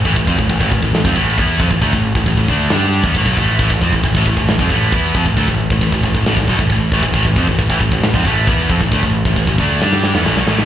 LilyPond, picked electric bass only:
\new Staff \with { instrumentName = "Picked electric bass" } { \clef bass \time 4/4 \key a \minor \tempo 4 = 135 a,,16 a,,16 f,16 a,,16 a,,16 a,,16 a,,16 a,,16 a,,16 f,16 a,,8 e,8 f,16 a,,16 | d,16 a,,8 a,,16 a,,16 a,,16 d,8 g,8. e,16 a,,16 b,,16 a,,8 | a,,16 a,,16 f,16 a,,16 a,,16 a,,16 a,,16 a,,16 a,,16 f,16 a,,8 e,8 f,16 a,,16 | d,16 a,,8 a,,16 a,,16 a,,16 a,,16 a,,16 a,,16 a,,16 b,,16 a,,16 a,,8 a,,16 a,,16 |
a,,16 a,,16 f,16 a,,16 a,,16 a,,16 a,,16 a,,16 a,,16 f,16 a,,8 e,8 f,16 a,,16 | d,16 a,,8 a,,16 a,,16 a,,16 d,8 g,8. e,16 a,,16 b,,16 a,,8 | }